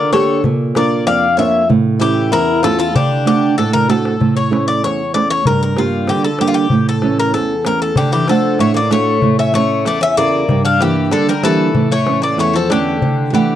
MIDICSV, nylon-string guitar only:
0, 0, Header, 1, 2, 480
1, 0, Start_track
1, 0, Tempo, 628272
1, 336, Time_signature, 2, 2, 24, 8
1, 10356, End_track
2, 0, Start_track
2, 0, Title_t, "Nylon-string guitar"
2, 0, Program_c, 0, 24
2, 0, Note_on_c, 0, 50, 71
2, 94, Note_on_c, 0, 58, 49
2, 97, Note_on_c, 0, 62, 44
2, 101, Note_on_c, 0, 67, 55
2, 287, Note_off_c, 0, 58, 0
2, 289, Note_off_c, 0, 62, 0
2, 291, Note_off_c, 0, 67, 0
2, 324, Note_off_c, 0, 50, 0
2, 343, Note_on_c, 0, 46, 70
2, 578, Note_on_c, 0, 58, 52
2, 582, Note_on_c, 0, 62, 51
2, 583, Note_on_c, 0, 65, 57
2, 804, Note_off_c, 0, 46, 0
2, 818, Note_on_c, 0, 41, 75
2, 960, Note_off_c, 0, 58, 0
2, 961, Note_off_c, 0, 62, 0
2, 963, Note_off_c, 0, 65, 0
2, 1054, Note_on_c, 0, 58, 51
2, 1058, Note_on_c, 0, 62, 47
2, 1063, Note_on_c, 0, 65, 56
2, 1246, Note_off_c, 0, 58, 0
2, 1246, Note_off_c, 0, 62, 0
2, 1251, Note_off_c, 0, 65, 0
2, 1280, Note_off_c, 0, 41, 0
2, 1295, Note_on_c, 0, 45, 71
2, 1532, Note_on_c, 0, 61, 44
2, 1536, Note_on_c, 0, 52, 54
2, 1540, Note_on_c, 0, 64, 59
2, 1758, Note_off_c, 0, 45, 0
2, 1771, Note_on_c, 0, 40, 72
2, 1915, Note_off_c, 0, 61, 0
2, 1917, Note_off_c, 0, 52, 0
2, 1920, Note_off_c, 0, 64, 0
2, 2012, Note_on_c, 0, 57, 54
2, 2018, Note_on_c, 0, 61, 48
2, 2018, Note_on_c, 0, 64, 63
2, 2203, Note_off_c, 0, 57, 0
2, 2206, Note_off_c, 0, 64, 0
2, 2207, Note_off_c, 0, 61, 0
2, 2236, Note_off_c, 0, 40, 0
2, 2250, Note_on_c, 0, 50, 69
2, 2487, Note_on_c, 0, 57, 51
2, 2492, Note_on_c, 0, 62, 50
2, 2496, Note_on_c, 0, 78, 54
2, 2715, Note_off_c, 0, 50, 0
2, 2734, Note_off_c, 0, 62, 0
2, 2737, Note_on_c, 0, 45, 69
2, 2872, Note_off_c, 0, 57, 0
2, 2875, Note_off_c, 0, 78, 0
2, 2969, Note_on_c, 0, 57, 51
2, 2973, Note_on_c, 0, 62, 46
2, 2977, Note_on_c, 0, 66, 51
2, 3161, Note_off_c, 0, 57, 0
2, 3164, Note_off_c, 0, 62, 0
2, 3165, Note_off_c, 0, 66, 0
2, 3198, Note_off_c, 0, 45, 0
2, 3211, Note_on_c, 0, 45, 62
2, 3445, Note_on_c, 0, 57, 54
2, 3449, Note_on_c, 0, 61, 46
2, 3452, Note_on_c, 0, 64, 57
2, 3675, Note_off_c, 0, 45, 0
2, 3693, Note_on_c, 0, 40, 66
2, 3830, Note_off_c, 0, 57, 0
2, 3831, Note_off_c, 0, 61, 0
2, 3834, Note_off_c, 0, 64, 0
2, 3931, Note_on_c, 0, 57, 49
2, 3937, Note_on_c, 0, 61, 41
2, 3941, Note_on_c, 0, 64, 52
2, 4121, Note_off_c, 0, 57, 0
2, 4125, Note_off_c, 0, 61, 0
2, 4128, Note_off_c, 0, 64, 0
2, 4156, Note_off_c, 0, 40, 0
2, 4176, Note_on_c, 0, 43, 61
2, 4409, Note_on_c, 0, 55, 50
2, 4411, Note_on_c, 0, 58, 50
2, 4416, Note_on_c, 0, 62, 56
2, 4638, Note_off_c, 0, 43, 0
2, 4648, Note_on_c, 0, 50, 72
2, 4793, Note_off_c, 0, 55, 0
2, 4795, Note_off_c, 0, 58, 0
2, 4796, Note_off_c, 0, 62, 0
2, 4892, Note_on_c, 0, 55, 53
2, 4896, Note_on_c, 0, 58, 47
2, 4896, Note_on_c, 0, 62, 55
2, 5083, Note_off_c, 0, 55, 0
2, 5084, Note_off_c, 0, 58, 0
2, 5085, Note_off_c, 0, 62, 0
2, 5114, Note_off_c, 0, 50, 0
2, 5127, Note_on_c, 0, 45, 62
2, 5368, Note_on_c, 0, 52, 49
2, 5371, Note_on_c, 0, 57, 48
2, 5375, Note_on_c, 0, 61, 61
2, 5593, Note_off_c, 0, 45, 0
2, 5603, Note_on_c, 0, 40, 68
2, 5753, Note_off_c, 0, 52, 0
2, 5755, Note_off_c, 0, 57, 0
2, 5756, Note_off_c, 0, 61, 0
2, 5845, Note_on_c, 0, 52, 46
2, 5850, Note_on_c, 0, 57, 39
2, 5851, Note_on_c, 0, 61, 52
2, 6039, Note_off_c, 0, 52, 0
2, 6041, Note_off_c, 0, 57, 0
2, 6042, Note_off_c, 0, 61, 0
2, 6072, Note_off_c, 0, 40, 0
2, 6094, Note_on_c, 0, 50, 68
2, 6333, Note_off_c, 0, 50, 0
2, 6333, Note_on_c, 0, 57, 50
2, 6336, Note_on_c, 0, 62, 46
2, 6340, Note_on_c, 0, 78, 56
2, 6562, Note_off_c, 0, 57, 0
2, 6565, Note_on_c, 0, 45, 65
2, 6717, Note_off_c, 0, 62, 0
2, 6720, Note_off_c, 0, 78, 0
2, 6806, Note_on_c, 0, 57, 48
2, 6810, Note_on_c, 0, 62, 48
2, 6814, Note_on_c, 0, 66, 53
2, 7000, Note_off_c, 0, 57, 0
2, 7003, Note_off_c, 0, 62, 0
2, 7005, Note_off_c, 0, 66, 0
2, 7034, Note_off_c, 0, 45, 0
2, 7053, Note_on_c, 0, 45, 69
2, 7293, Note_on_c, 0, 57, 51
2, 7299, Note_on_c, 0, 61, 44
2, 7299, Note_on_c, 0, 64, 52
2, 7519, Note_off_c, 0, 45, 0
2, 7533, Note_on_c, 0, 40, 60
2, 7678, Note_off_c, 0, 57, 0
2, 7680, Note_off_c, 0, 61, 0
2, 7681, Note_off_c, 0, 64, 0
2, 7776, Note_on_c, 0, 49, 49
2, 7776, Note_on_c, 0, 64, 52
2, 7778, Note_on_c, 0, 69, 47
2, 7967, Note_off_c, 0, 49, 0
2, 7967, Note_off_c, 0, 64, 0
2, 7967, Note_off_c, 0, 69, 0
2, 7999, Note_off_c, 0, 40, 0
2, 8021, Note_on_c, 0, 43, 68
2, 8261, Note_on_c, 0, 55, 46
2, 8264, Note_on_c, 0, 58, 42
2, 8268, Note_on_c, 0, 62, 55
2, 8484, Note_off_c, 0, 43, 0
2, 8498, Note_on_c, 0, 50, 61
2, 8643, Note_off_c, 0, 55, 0
2, 8644, Note_off_c, 0, 58, 0
2, 8647, Note_off_c, 0, 62, 0
2, 8734, Note_on_c, 0, 55, 49
2, 8738, Note_on_c, 0, 58, 47
2, 8741, Note_on_c, 0, 62, 54
2, 8927, Note_off_c, 0, 55, 0
2, 8930, Note_off_c, 0, 58, 0
2, 8932, Note_off_c, 0, 62, 0
2, 8963, Note_off_c, 0, 50, 0
2, 8974, Note_on_c, 0, 45, 70
2, 9216, Note_on_c, 0, 52, 53
2, 9219, Note_on_c, 0, 57, 46
2, 9222, Note_on_c, 0, 61, 59
2, 9442, Note_off_c, 0, 45, 0
2, 9458, Note_on_c, 0, 40, 65
2, 9602, Note_off_c, 0, 52, 0
2, 9604, Note_off_c, 0, 57, 0
2, 9605, Note_off_c, 0, 61, 0
2, 9701, Note_on_c, 0, 52, 48
2, 9705, Note_on_c, 0, 57, 48
2, 9708, Note_on_c, 0, 61, 56
2, 9893, Note_off_c, 0, 52, 0
2, 9895, Note_off_c, 0, 57, 0
2, 9896, Note_off_c, 0, 61, 0
2, 9925, Note_off_c, 0, 40, 0
2, 9949, Note_on_c, 0, 50, 67
2, 10182, Note_on_c, 0, 57, 48
2, 10185, Note_off_c, 0, 50, 0
2, 10188, Note_on_c, 0, 62, 48
2, 10188, Note_on_c, 0, 78, 59
2, 10356, Note_off_c, 0, 57, 0
2, 10356, Note_off_c, 0, 62, 0
2, 10356, Note_off_c, 0, 78, 0
2, 10356, End_track
0, 0, End_of_file